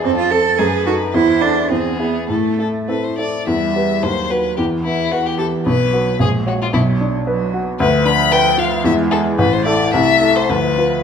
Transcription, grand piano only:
X:1
M:2/4
L:1/8
Q:1/4=110
K:Am
V:1 name="Grand piano"
F,, [CA] ^F,, [^DA] | E,, [EA] E,, [E^G] | A,, [EA] [CEA] [EA] | [K:Em] E,, [GB] ^D,, [FB] |
E,, B, B G | B,,, [FB] ^A,,, [F^c] | B,,, D B F | [K:Am] D,, D B F |
E,, [E^G] A,,, [EA] | C,, [EA] D,, [FB] |]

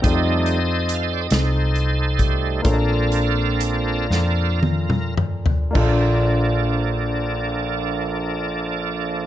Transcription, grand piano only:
X:1
M:6/8
L:1/8
Q:3/8=39
K:Bb
V:1 name="Grand piano"
[CEFAde]6 | [B,DFA_d=d]6 | [B,DFAd]6 |]
V:2 name="Grand piano" clef=bass
z6 | B,,3 z3 | B,,,6 |]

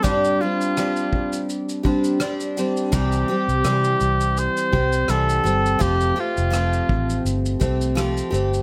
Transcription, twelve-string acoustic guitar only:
X:1
M:4/4
L:1/8
Q:"Swing 16ths" 1/4=83
K:Gmix
V:1 name="Twelve-string acoustic guitar"
[G,,D,G,CDG] [G,CDG] [G,CDG]3 [G,CDG] [G,CDG] [G,CDG] | [C,E,G,CG] [G,CG] [E,G,CG]3 [G,CG] [E,G,CG] [G,CG] | [F,A,CG] [A,CG] [F,A,CG]3 [A,CG] [F,A,CG] [A,CG] |]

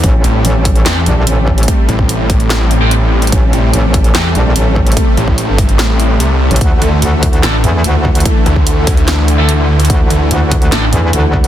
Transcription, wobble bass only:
X:1
M:4/4
L:1/16
Q:1/4=146
K:Am
V:1 name="Wobble bass" clef=bass
A,,,2 z2 A,,,4 z2 _B,,,2 A,,,4 | z16 | A,,,2 z2 A,,,4 z2 _B,,,2 A,,,4 | z12 z3 A,,, |
D,,2 z2 D,,4 z2 E,,2 D,,4 | z16 | D,,2 z2 D,,4 z2 E,,2 D,,4 |]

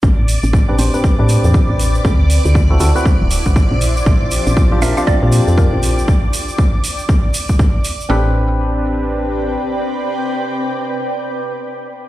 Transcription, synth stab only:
X:1
M:4/4
L:1/16
Q:"Swing 16ths" 1/4=119
K:Am
V:1 name="Synth stab"
z4 z [CDGB] [CDGc] [CDGB]2 [CDGB]6- [CDGB] | z4 z [CE^FA] [CEFA] [CEFB] z8 | z4 z [CDFG] [CDF_B] [CDFG]2 [CDFG]6- [CDFG] | z16 |
[CDGB]16- | [CDGB]16 |]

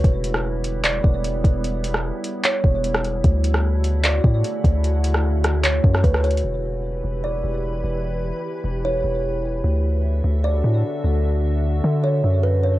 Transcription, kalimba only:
X:1
M:4/4
L:1/8
Q:1/4=150
K:Edor
V:1 name="Kalimba"
z4 d4 | z4 c2 z2 | z4 d4 | z4 c2 B c |
z4 d4 | z4 c2 z2 | z4 d4 | z4 c2 B c |]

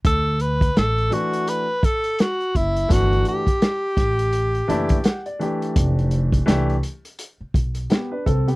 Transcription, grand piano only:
X:1
M:4/4
L:1/16
Q:"Swing 16ths" 1/4=84
K:D
V:1 name="Grand piano"
z16 | z8 z2 a2 f d3 | z12 [B,G] [DB] [=CA] [B,G] |]
V:2 name="Grand piano"
z6 [E,A,DF]2 z8 | [E,A,DF]2 z8 [E,A,DE]2 z2 [E,A,DG]2- | [E,A,DG]4 [E,A,DG]2 z8 z2 |]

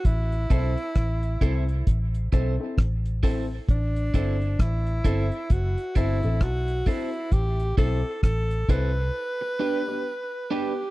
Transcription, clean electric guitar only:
X:1
M:4/4
L:1/8
Q:"Swing 16ths" 1/4=66
K:Ador
V:1 name="Clean electric guitar"
z [EAc] z [EAc] z [EAc] z [EAc] | z [EAc] z [EAc] z [EAc] z [EAc] | z [EAc] z [EAc] z [DGB] z [DGB] |]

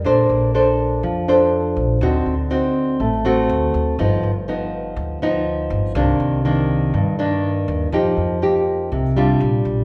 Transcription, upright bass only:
X:1
M:4/4
L:1/8
Q:1/4=122
K:Bb
V:1 name="Upright bass" clef=bass
B,,, B,,,3 F,,3 B,,, | D,, D,,3 A,,,2 D,, D,, | G,,, G,,,3 D,,3 G,,, | C,, C,,3 G,,3 E,, |
F,, F,,3 C,,2 B,,, B,,, |]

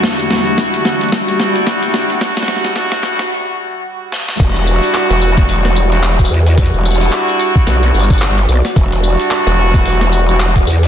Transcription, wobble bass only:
X:1
M:4/4
L:1/16
Q:"Swing 16ths" 1/4=110
K:Em
V:1 name="Wobble bass" clef=bass
z16 | z16 | E,,,3 z2 E,,,3 E,,,6 E,,2- | E,, E,,,3 z4 B,,,2 G,,,4 B,,, z |
E,,,3 z2 E,,,3 E,,,6 E,,2 |]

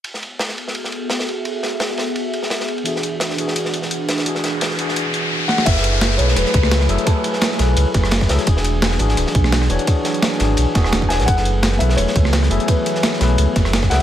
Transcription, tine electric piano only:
X:1
M:4/4
L:1/8
Q:1/4=171
K:F#m
V:1 name="Tine electric piano"
z8 | z8 | [E,DFG]3 [E,DFG]4- [E,DFG] | [E,DFG]3 [E,DFG]3 z2 |
[F,EGAB]3 [F,EGAB]4 [F,EGAe] | [F,EABg]3 [F,EGAB]4 [F,EGAe] | [E,DFG]3 [E,DFG]4 [E,DFc] | [E,DFG]3 [E,DFG]2 [E,DFG]2 [E,DFc] |
[F,EGAB]3 [F,EGAB]4 [F,EGAe] | [F,EB]3 [F,EGAB]4 [F,EGAe] |]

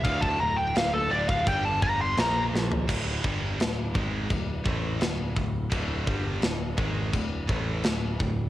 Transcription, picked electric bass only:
X:1
M:4/4
L:1/8
Q:1/4=84
K:Dm
V:1 name="Picked electric bass" clef=bass
D,, D,,, D,,, D,,, G,,,2 B,,, B,,, | D,,, G,,, D,,, ^G,,, D,,, A,,, D,,, D,,, | D,,, G,,, D,,, ^G,,, D,,, A,,, D,,, D,,, |]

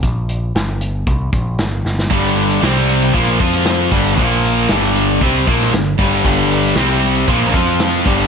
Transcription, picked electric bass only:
X:1
M:4/4
L:1/8
Q:1/4=116
K:Flyd
V:1 name="Picked electric bass" clef=bass
_B,,,2 G,,,2 C,, B,,, G,,, G,,, | G,,,2 C,,2 _B,,, F,,2 G,,, | _B,,,2 G,,,2 C,, B,,, G,,, G,,, | G,,,2 C,,2 _B,,, F,,2 G,,, |]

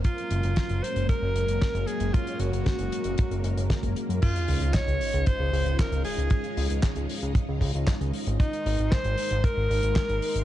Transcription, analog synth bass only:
X:1
M:4/4
L:1/16
Q:1/4=115
K:Db
V:1 name="Analog synth bass" clef=bass
z2 G,,, G,,, z G,,, z G,,, z G,,, G,,, G,,, z G,,, z G,,, | z2 G,,, G,,, z G,,, z G,,, z G,,, G,,, G,,, z G,,, z G,, | z2 D,, D,, z D,, z D,, z D,, D,, D,, z D,, z D,, | z2 D,, D,, z D,, z D,, z D,, D,, D,, z D,, z A,,, |
z2 A,,, A,,, z A,,, z A,,, z A,,, A,,, A,,, z A,,, z A,,, |]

